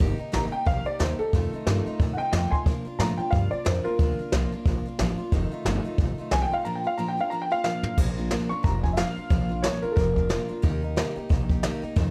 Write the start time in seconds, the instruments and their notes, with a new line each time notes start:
0.00 upright bass G1, steel-string acoustic guitar D#3 A#3 D#4 G4, kick, open hi-hat
0.18 steel-string acoustic guitar A#3 D#4 G4, muted upright bass stroke
0.32 upright bass A1, steel-string acoustic guitar D#3 A#3 D#4 G4, upright piano A#5, snare, open hi-hat
0.51 steel-string acoustic guitar A#3 D#4 G4, upright piano G5, muted upright bass stroke
0.66 upright bass A#1, steel-string acoustic guitar D#3 A#3 D#4 G4, upright piano F5, kick, open hi-hat
0.85 steel-string acoustic guitar A#3 D#4 G4, upright piano D5, muted upright bass stroke
0.99 upright bass D#2, steel-string acoustic guitar D#3 A#3 D#4 G4, upright piano C5, snare, open hi-hat
1.19 steel-string acoustic guitar A#3 D#4 G4, upright piano A4, muted upright bass stroke
1.33 steel-string acoustic guitar F2 C3 D#3 A3 D#4 F4, upright bass F2, kick, open hi-hat
1.53 steel-string acoustic guitar D#3 A3 D#4 F4, muted upright bass stroke
1.66 steel-string acoustic guitar F2 C3 D#3 A3 D#4 F4, upright bass G2, snare, open hi-hat
1.86 steel-string acoustic guitar D#3 A3 D#4 F4, muted upright bass stroke
2.00 upright bass A2, steel-string acoustic guitar D#3 A3 D#4 F4, kick, open hi-hat
2.13 upright piano D#5 F#5
2.18 steel-string acoustic guitar D#3 A3 D#4 F4, upright piano G5, muted upright bass stroke
2.32 upright bass F2, steel-string acoustic guitar F2 C3 D#3 A3 D#4 F4, upright piano D#5 G5, snare, open hi-hat
2.51 steel-string acoustic guitar A3 D#4 F4, upright piano G#5 C6, muted upright bass stroke, kick
2.55 steel-string acoustic guitar D#3
2.66 upright bass A#2, steel-string acoustic guitar A#2 F3 A#3 D4 F4, kick, open hi-hat
2.85 steel-string acoustic guitar A#3 D4 F4, muted upright bass stroke
2.99 upright bass A2, steel-string acoustic guitar A#2 F3 A#3 D4 F4, upright piano A#5, snare, open hi-hat
3.18 steel-string acoustic guitar A#3 D4 F4, upright piano G5, muted upright bass stroke
3.31 upright bass G2, steel-string acoustic guitar F3 A#3 D4 F4, upright piano F5, kick, open hi-hat
3.51 steel-string acoustic guitar A#3 D4 F4, upright piano D5, muted upright bass stroke
3.65 upright bass F2, steel-string acoustic guitar A#2 F3 A#3 D4 F4, upright piano C5, snare, open hi-hat
3.84 steel-string acoustic guitar A#3 D4 F4, upright piano F4 A#4, muted upright bass stroke
3.99 upright bass D2, steel-string acoustic guitar A#2 F3 A#3 D4 F4, kick, open hi-hat
4.18 steel-string acoustic guitar A#3 D4 F4, muted upright bass stroke
4.32 upright bass C2, steel-string acoustic guitar A#2 F3 A#3 D4 F4, snare, open hi-hat
4.51 steel-string acoustic guitar A#3 D4 F4, muted upright bass stroke
4.65 upright bass A#1, steel-string acoustic guitar F3 A#3 D4 F4, kick, open hi-hat
4.85 steel-string acoustic guitar A#3 D4 F4, muted upright bass stroke
4.99 upright bass A1, steel-string acoustic guitar A#2 F3 A#3 D4 F4, snare, open hi-hat
5.18 steel-string acoustic guitar A#3 D4 F4, muted upright bass stroke
5.32 upright bass F1, steel-string acoustic guitar F2 C3 D#3 A3 D#4 F4, kick, open hi-hat
5.51 steel-string acoustic guitar D#3 A3 D#4 F4, muted upright bass stroke
5.65 upright bass G1, steel-string acoustic guitar F2 C3 D#3 A3 D#4 F4, snare, open hi-hat
5.85 steel-string acoustic guitar D#3 A3 D#4 F4, muted upright bass stroke
5.98 upright bass A1, steel-string acoustic guitar D#3 A3 D#4 F4, kick, open hi-hat
6.17 steel-string acoustic guitar D#3 A3 D#4 F4, muted upright bass stroke
6.31 upright bass C2, steel-string acoustic guitar F2 C3 D#3 A3 D#4 F4, upright piano G#5, snare, open hi-hat
6.42 upright piano G5
6.51 steel-string acoustic guitar D#3 A3 D#4 F4, upright piano F5, muted upright bass stroke
6.65 steel-string acoustic guitar A#2 F3 A#3 D4 F4, upright piano A#5
6.75 upright piano G5
6.84 steel-string acoustic guitar A#3 D4 F4, upright piano F5
6.98 steel-string acoustic guitar A#2 F3 A#3 D4 F4, upright piano A#5
7.08 upright piano G5
7.17 steel-string acoustic guitar A#3 D4 F4, upright piano F5
7.30 steel-string acoustic guitar F3 A#3 D4, upright piano A#5
7.34 steel-string acoustic guitar F4
7.42 upright piano G5
7.51 steel-string acoustic guitar A#3 D4 F4, upright piano F5
7.64 steel-string acoustic guitar A#2 F3 A#3 D4 F4, upright piano F5, snare
7.83 steel-string acoustic guitar A#3 D4 F4, floor tom
7.98 upright bass A#1, steel-string acoustic guitar A#2 F3 A#3 D4 F4, kick, crash
8.17 steel-string acoustic guitar A#3 D4 F4
8.31 steel-string acoustic guitar A#2 F3 A#3 D4 F4, snare, open hi-hat
8.49 steel-string acoustic guitar A#3 D4 F4, upright piano C#6, muted upright bass stroke
8.63 upright bass F1, steel-string acoustic guitar F3 A#3 D4 F4, upright piano A#5, kick, open hi-hat
8.83 steel-string acoustic guitar A#3 D4 F4, upright piano G#5, kick
8.93 steel-string acoustic guitar A#2, upright piano E5
8.97 steel-string acoustic guitar F3 A#3 D4 F4, upright piano F5, snare, open hi-hat
9.16 steel-string acoustic guitar A#3 D4 F4, muted upright bass stroke
9.30 upright bass A#1, steel-string acoustic guitar A#2 F3 A#3 D4 F4, kick, open hi-hat
9.49 steel-string acoustic guitar A#3 D4 F4
9.62 steel-string acoustic guitar A#2 F3 A#3 D4 F4, upright piano C#5, snare, open hi-hat
9.82 steel-string acoustic guitar A#3 D4 F4, upright piano A#4, muted upright bass stroke
9.91 upright piano A4
9.96 upright bass F1, steel-string acoustic guitar F3 A#3 D4 F4, upright piano A#4, kick, open hi-hat
10.16 steel-string acoustic guitar A#3 D4 F4, kick
10.29 steel-string acoustic guitar A#2 F3 A#3 D4 F4, snare, open hi-hat
10.48 steel-string acoustic guitar A#3 D4 F4, muted upright bass stroke
10.62 upright bass D#2, steel-string acoustic guitar D#3 A#3 D#4 G4, kick, open hi-hat
10.82 steel-string acoustic guitar A#3 D#4 G4
10.96 steel-string acoustic guitar D#3 A#3 D#4 G4, snare, open hi-hat
11.16 steel-string acoustic guitar A#3 D#4 G4, muted upright bass stroke
11.29 upright bass A#1, steel-string acoustic guitar D#3 A#3 D#4 G4, kick, open hi-hat
11.50 steel-string acoustic guitar A#3 D#4 G4, kick
11.63 steel-string acoustic guitar D#3 A#3 D#4 G4, snare, open hi-hat
11.82 steel-string acoustic guitar A#3 D#4 G4, muted upright bass stroke
11.96 steel-string acoustic guitar F2 C3 D#3 A3 D#4 F4, upright bass F2, kick, open hi-hat